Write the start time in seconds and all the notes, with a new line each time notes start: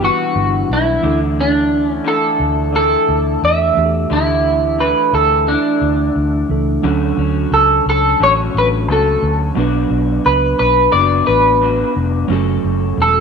Already playing: G4
0.00 E3 G3 B3 D4 E4 B4
0.04 F#4
0.35 G1
0.69 B1 E4
1.01 D2 D3 E3 A3 D4 E4
1.06 A4
1.41 D4
1.89 C#4
2.04 D3 A3 D4 E4 A4
2.40 D2
2.72 D3 A3 A4
2.77 D4 E4
3.09 D2
3.43 E2 E5
3.74 E2 E3 A3 D4
3.78 G4
3.85 A4
4.10 D2 D3 A3 D4 E4
4.78 D3 A3 D4 E4 B4
5.13 D2 A4
5.48 A3 D4
5.52 E4
5.81 D2
6.16 D2
6.49 C#2 E3 A3 D4 A4
6.82 D2 D3 F#3 A3 C#4 D4 F#4
6.87 A4
7.17 D2 A3 C#4 F#4
7.51 C#2 A4
7.86 C#2 A4
8.20 A1 D3 A3 C#4 F#4 C#5
8.55 A1 B4
8.88 C#2 A3 C#4 F#4
8.92 A4
9.22 D2
9.54 B1 B2 F#3 B3 D4
9.59 D4 F#4 B4
9.90 B1
10.26 C#2 B4
10.59 B1 B4
10.92 F#1 F#3 B3 D4 F#4 D5
11.27 A1 B4
11.61 F#3 B3 D4 F#4
11.96 F1
12.28 F#1 F#3 A3 C#4 F#4
12.32 A4
12.64 F#1
12.98 E1
13.02 A4